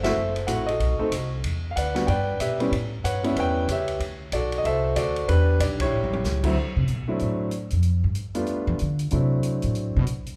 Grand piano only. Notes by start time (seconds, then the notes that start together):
0.03 A3 C4 E4 F#4 A4 E5
0.07 C5
0.47 A3 C4 E4 F#4 F#5
0.66 F#4 A4 D#5
0.99 A3 C4 D#4 A4
1.71 F5
1.76 B4 D5 F#5
1.95 G3 B3 D4 F#4
2.07 B4 D5 G5
2.40 G4 B4 E5
2.60 G3 B3 C#4 E4
3.04 B4 C#5 F#5
3.23 G3 B3 C#4 E4
3.39 B4 C#5 G5
3.71 G4 C#5 E5
4.33 F#4 A4 D5
4.58 D#5
4.65 A4 C5 E5
4.96 F#4 A4 D5
5.28 D4 G4 B4
5.61 D5
5.81 E4 G4 C#5
6.43 D2 F#3 A3 C4 E4
7.08 F#3 A3 C4 D4 E4
8.35 G3 A3 B3 D4 F4
9.11 F#3 A3 C4 D4 E4